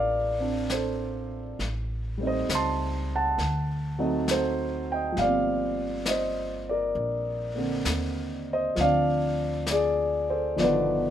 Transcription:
Already playing: A1 F3 C4 D4 A#4 D5 F5
0.39 C4 D4
0.70 C5, snare, hi-hat pedal
0.74 A4
1.59 A1, brush sweep, snare
2.17 G3 A3 C4
2.23 D#4
2.27 C5 D#5
2.49 C#2, snare, hi-hat pedal
2.55 A5 C6
3.15 F#5 A5
3.38 D2, brush sweep, snare
3.98 F#3 A3 C4 D#4
4.28 C5, snare, hi-hat pedal
4.33 A4
4.92 D#5 G5
5.12 F3 G3
5.17 G1 A#3 F5, brush sweep, snare
5.21 C4 D5
6.06 D#5, snare, hi-hat pedal
6.11 C5
6.69 A#4 D5
6.95 A#1, brush sweep
7.55 D3 A#3 C4
7.85 D#2, snare, hi-hat pedal
8.53 C5 D#5
8.75 D2 F3 C4, brush sweep, snare
8.80 D4 D5 F5
9.66 snare, hi-hat pedal
9.71 G#4 D5
10.30 A4 C5
10.56 G1 B2 D#3 F3 D5, brush sweep, snare
10.61 D3 B4

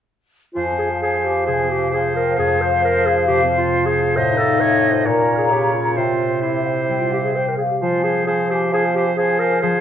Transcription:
0.54 F2 F3 F4 C5 G#5
0.71 C4
0.79 G#4
0.87 F5
1.01 G#4 C5 G#5
1.18 F5
1.25 G4
1.32 G#4
1.46 C3 G#4 C5 G#5
1.63 C4
1.71 G4
1.77 F5
1.91 G#4 C5 G#5
2.07 F5
2.16 A#4 G5
2.22 G#4
2.35 F2 G#4 C5 F5
2.53 C4
2.61 C5
2.68 F5
2.83 A#4 C5
2.98 F5
3.06 G#4
3.13 F4
3.28 C3 G4
3.43 C4
3.57 F4 F5
3.73 C5
3.86 G#4 F5
4.02 F4
4.16 A2 C5 D#5 F5
4.32 D#4
4.38 A4
4.47 F5
4.61 C#5 D#5
4.76 F5
4.91 F4 C5
5.05 A#2 A#4 C#5 A#5
5.21 C#4
5.36 G#4 F5
5.51 C#3 G4 C#5
5.67 F5
5.73 F4
5.82 A#4
5.97 C3 F4 C5 G5
6.12 C4
6.28 C5
6.42 E4 G4 C5 E5
6.58 C5
6.67 G5
6.74 G4
6.89 G3 G5
7.00 C4 F4
7.13 G4 F5
7.20 C5
7.24 G#4
7.36 G4 C5 G5
7.49 A#4 C5
7.58 G#4 F5
7.66 G4
7.70 G4
7.81 F3 F4 C5 G#5
7.97 C4
8.04 G#4 C5 G#5
8.13 C5
8.27 F3 G#4 C5 G#5
8.42 C5
8.50 G4 C5 G#5
8.58 G#4
8.72 F3 F4 G#4 C5 G#5
8.88 C4
8.94 G4 C5 G#5
9.03 C5
9.16 F3 G#4 C5 G#5
9.33 C5
9.39 A#4 C5 G#5
9.48 G#4
9.62 F3 G#4 C5 F5

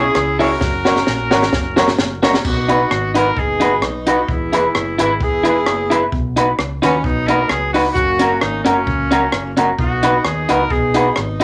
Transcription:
Already playing: C#4 E4 G#4
0.15 C#2, cross-stick
0.39 C#4 E4 F#4 G#4 A#4 C#5, open hi-hat
0.61 F#1, kick, snare
0.85 C#4 F#4 A#4 C#5, snare
0.96 snare
1.07 A#1 A#4 C#5, snare
1.31 G#1 C#4 F#4 A#4 C#5, snare
1.42 snare
1.53 F#1, kick, snare
1.76 C#4 F#4 A#4 C#5, snare
1.88 snare
1.98 F#1, snare
2.22 C#4 F#4 A#4 C#5, snare
2.34 snare
2.45 B1 B3 D#4 F#4, kick, crash
2.68 D#4 F#4 B4, closed hi-hat
2.91 G#1, cross-stick
3.14 D#4 F#4 A#4 B4, closed hi-hat
3.37 F#1 B3 D#4 G#4, kick
3.60 D#4 F#4 B4, closed hi-hat
3.82 B1, cross-stick
4.07 D#4 F#4 B4, closed hi-hat
4.28 E1 G#3 B3 E4, kick
4.53 E4 G#4 B4, closed hi-hat
4.75 F#1, cross-stick
4.98 G#1 E4 G#4 B4, closed hi-hat
5.21 E1 B3 E4 G#4, kick
5.43 E4 G#4 B4, closed hi-hat
5.66 F#1, cross-stick
5.90 E4 G#4 B4, closed hi-hat
6.12 B1, kick
6.36 D#4 F#4 B4, closed hi-hat
6.59 C#2, cross-stick
6.82 D#2 C#4 D#4 F#4 B4, closed hi-hat
7.03 B1 F#3 B3 D#4, kick
7.28 D#4 F#4 A#4 B4, closed hi-hat
7.49 C#2 G#4, cross-stick
7.73 D#4 F#4 B4, open hi-hat
7.93 F#1 A#3 C#4 F#4, kick, hi-hat pedal
8.19 C#4 F#4 A#4, closed hi-hat
8.40 G#1 D#4, cross-stick
8.65 F#1 F#3 A#3 C#4 F#4 A#4, closed hi-hat
8.87 C#2, kick
9.11 C#4 F#4 A#4, closed hi-hat
9.32 F#1, cross-stick
9.57 C#4 F#4 A#4, closed hi-hat
9.79 B1 B3 D#4 F#4, kick
10.03 D#4 F#4 B4, closed hi-hat
10.25 D#2 G#4, cross-stick
10.49 C#2 D#4 F#4 A#4 B4, closed hi-hat
10.70 B1 B3 D#4 G#4, kick
10.94 D#4 F#4 B4, closed hi-hat
11.16 G#1, cross-stick
11.40 D#4, closed hi-hat

